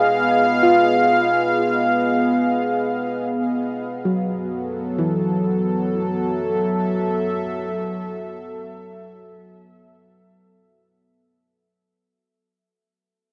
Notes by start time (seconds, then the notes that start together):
Already playing: B3 G#4 D#5 F5 G#5
0.63 F4
4.05 F#3
4.11 F#3
4.53 A4
4.99 E3
6.16 E5